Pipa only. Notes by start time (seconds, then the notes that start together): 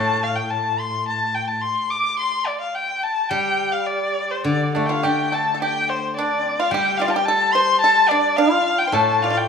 4.75 D4
4.89 F4
5.03 G4
5.32 A4
5.54 A4
5.62 G4
6.19 D4
6.44 C4
6.60 F4
6.74 G4
7.00 F4 G4
7.08 F4
7.16 G4
7.28 A4
7.55 C5
7.84 A4
8.11 D4
8.38 F4
8.87 C5
8.93 A4
9.24 F4
9.30 F4